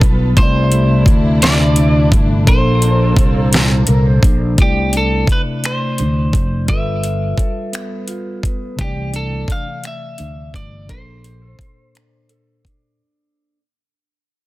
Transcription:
Already playing: tine electric piano G3 F4 A4 B4, string section G3 F4 A4 B4, clean electric guitar G3 F4 A4
0.01 fretless electric bass B1, clean electric guitar B3, kick, closed hi-hat
0.35 fretless electric bass C2, tine electric piano C3 A3, string section C3 A3 D4 E4, clean electric guitar C3 C5, kick, closed hi-hat
0.40 tine electric piano E4 D5
0.72 clean electric guitar A3, closed hi-hat
1.06 fretless electric bass D2, clean electric guitar D4, kick, closed hi-hat
1.42 clean electric guitar A3 D5, snare, closed hi-hat
1.76 clean electric guitar E4, closed hi-hat
2.12 fretless electric bass G1, clean electric guitar A3, kick, closed hi-hat
2.44 fretless electric bass A#1, tine electric piano A#2 A4, string section A#3 A4, clean electric guitar A#3 C5, kick, closed hi-hat
2.49 tine electric piano D4 A#4
2.58 tine electric piano C5
2.82 clean electric guitar D4, closed hi-hat
3.17 fretless electric bass C2, clean electric guitar A4, kick, closed hi-hat
3.53 clean electric guitar D4, snare, closed hi-hat
3.87 fretless electric bass C2, clean electric guitar A#4, closed hi-hat
4.06 clean electric guitar C5
4.23 fretless electric bass A#1, clean electric guitar D4, kick, closed hi-hat
4.55 fretless electric bass C2, tine electric piano C3 A3, clean electric guitar C3, kick, closed hi-hat
4.60 tine electric piano E4 D5, clean electric guitar G4
4.92 clean electric guitar D4, closed hi-hat
4.97 clean electric guitar A4
5.27 clean electric guitar E4, muted fretless electric bass stroke, kick, closed hi-hat
5.32 clean electric guitar B4
5.64 clean electric guitar A3 C5, finger snap, closed hi-hat
5.98 fretless electric bass D2, clean electric guitar D4, closed hi-hat
6.33 clean electric guitar A3, kick, closed hi-hat
6.66 fretless electric bass G1, tine electric piano G3 F4, clean electric guitar G3 E5, kick, closed hi-hat
6.71 tine electric piano A4 B4
7.04 clean electric guitar F4, closed hi-hat
7.38 clean electric guitar A4, kick, closed hi-hat
7.73 clean electric guitar B3, finger snap, closed hi-hat
8.08 clean electric guitar F4, closed hi-hat
8.43 clean electric guitar B3, kick, closed hi-hat
8.76 fretless electric bass C2, tine electric piano C3 A3, clean electric guitar C3, kick, closed hi-hat
8.81 tine electric piano D4 D5, clean electric guitar G4
8.88 tine electric piano E3
9.13 clean electric guitar D4 A4, closed hi-hat
9.48 clean electric guitar D4 F5, muted fretless electric bass stroke, kick, closed hi-hat
9.67 clean electric guitar E4
9.84 clean electric guitar A3 E5, finger snap, closed hi-hat
10.18 fretless electric bass D2, clean electric guitar D4, closed hi-hat
10.54 fretless electric bass G1, clean electric guitar A3 D5, kick, closed hi-hat
10.86 fretless electric bass A#1, tine electric piano A#2 A4, clean electric guitar A#3, kick, closed hi-hat
10.90 tine electric piano D4 A#4, clean electric guitar C5
11.00 tine electric piano C5
11.24 clean electric guitar G4, closed hi-hat
11.42 clean electric guitar A4
11.59 clean electric guitar C5, muted fretless electric bass stroke, kick, closed hi-hat
11.95 clean electric guitar D4, finger snap, closed hi-hat
12.29 clean electric guitar A4, closed hi-hat
12.65 clean electric guitar D4, kick, closed hi-hat

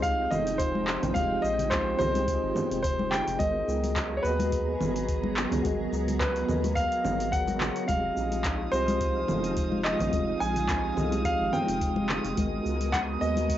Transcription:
Already playing: analog synth bass C2, string machine F3 G#3 D#4 G5, tine electric piano C4 F4 G4 G#4 D#5
0.02 grand piano F5, kick, open hi-hat, shaker
0.31 analog synth bass F1, grand piano D#5, high conga, low conga, shaker
0.47 open hi-hat, shaker
0.58 grand piano C5, kick, open hi-hat, shaker
0.75 high conga
0.87 clap, shaker
1.03 analog synth bass A#1, open hi-hat, low conga, shaker
1.13 analog synth bass F1, tine electric piano C4 F4 G4 G#4, grand piano F5, kick, open hi-hat, high conga, shaker
1.18 tine electric piano D#5
1.42 analog synth bass A#1, grand piano D#5, shaker
1.59 open hi-hat, high conga, low conga, shaker
1.70 grand piano C5, kick, clap, open hi-hat, shaker
1.97 analog synth bass C2, tine electric piano C4 F4 G4 G#4, grand piano C5, low conga, shaker
2.02 tine electric piano D#5
2.15 open hi-hat, high conga, shaker
2.28 kick, open hi-hat, shaker
2.43 analog synth bass G#1
2.55 high conga, low conga, shaker
2.71 analog synth bass F1, open hi-hat, shaker
2.83 grand piano C5, kick, open hi-hat, shaker
2.99 high conga
3.11 grand piano G5, clap, low conga, shaker
3.27 analog synth bass F1, open hi-hat, shaker
3.37 analog synth bass G#1, string machine F#3 B3 G#4 A#5, tine electric piano B3 F#4 G#4 A#4, grand piano D#5, kick, open hi-hat, high conga, shaker
3.42 tine electric piano D#5
3.68 analog synth bass C#2, shaker
3.84 open hi-hat, high conga, shaker
3.96 kick, clap, open hi-hat, shaker
4.17 grand piano C#5
4.21 analog synth bass D#2, tine electric piano B3 F#4 G#4 B4, grand piano B4, shaker
4.26 tine electric piano D#5
4.39 open hi-hat, high conga, shaker
4.52 kick, open hi-hat, shaker
4.80 analog synth bass G#1, high conga, low conga, shaker
4.96 open hi-hat, shaker
5.08 kick, open hi-hat, shaker
5.23 high conga
5.37 clap, shaker
5.51 analog synth bass C#2, open hi-hat, low conga, shaker
5.62 analog synth bass G#1, tine electric piano B3 F#4 G#4 A#4, kick, open hi-hat, high conga, shaker
5.67 tine electric piano D#5
5.92 analog synth bass C#2, shaker
6.08 open hi-hat, high conga, low conga, shaker
6.20 grand piano B4, kick, clap, open hi-hat, shaker
6.36 open hi-hat
6.46 analog synth bass D#2, tine electric piano B3 F#4 G#4 A#4, low conga, shaker
6.51 tine electric piano D#5
6.64 open hi-hat, high conga, shaker
6.76 grand piano F5, kick, open hi-hat, shaker
6.92 open hi-hat
7.05 analog synth bass G#1, high conga, low conga, shaker
7.20 open hi-hat, shaker
7.31 tine electric piano B3 F#4 G#4 A#4 C#5, grand piano F#5, kick, open hi-hat, shaker
7.46 tine electric piano B3 F#4 G#4 A#4 F#5, open hi-hat, high conga
7.61 clap, low conga, shaker
7.76 open hi-hat, shaker
7.86 analog synth bass F1, string machine F3 G#3 D#4 F5, tine electric piano C4 F4 G4 G#4, grand piano F5, synth texture D#6, kick, open hi-hat, high conga, shaker
7.91 tine electric piano D#5
8.17 analog synth bass A#1, shaker
8.32 open hi-hat, high conga, shaker
8.44 kick, clap, open hi-hat, shaker
8.70 analog synth bass C2, tine electric piano C4 F4 G4 G#4, grand piano C5, shaker
8.75 tine electric piano D#5
8.88 open hi-hat, high conga, shaker
9.01 kick, open hi-hat, shaker
9.28 analog synth bass F1, high conga, low conga, shaker
9.44 open hi-hat, shaker
9.57 kick, open hi-hat, shaker
9.72 high conga
9.84 grand piano D#5, clap, shaker
9.99 analog synth bass A#1, open hi-hat, low conga, shaker
10.10 analog synth bass F1, tine electric piano C4 D#4 F4 G#4, kick, open hi-hat, high conga, shaker
10.15 tine electric piano D#5
10.40 analog synth bass A#1, grand piano G#5, shaker
10.56 open hi-hat, high conga, low conga, shaker
10.69 kick, clap, open hi-hat, shaker
10.95 analog synth bass C2, tine electric piano C4 F4 G4 G#4, low conga, shaker
10.99 tine electric piano D#5
11.12 open hi-hat, high conga, shaker
11.25 grand piano F5, kick, open hi-hat, shaker
11.41 analog synth bass G#1
11.53 grand piano G5, high conga, low conga, shaker
11.68 analog synth bass F1, open hi-hat, shaker
11.81 kick, open hi-hat, shaker
11.96 high conga
12.09 clap, low conga, shaker
12.24 analog synth bass F1, open hi-hat, shaker
12.34 analog synth bass G#1, tine electric piano B3 F#4 G#4 A#4, string machine B3 F#4 A#5, kick, open hi-hat, high conga, shaker
12.39 tine electric piano D#5
12.65 analog synth bass C#2, shaker
12.81 open hi-hat, high conga, shaker
12.92 grand piano F#5, kick, clap, open hi-hat, shaker
13.18 analog synth bass D#2, tine electric piano B3 F#4 G#4 A#4, grand piano D#5, shaker
13.24 tine electric piano D#5
13.37 open hi-hat, high conga, shaker
13.49 kick, open hi-hat, shaker

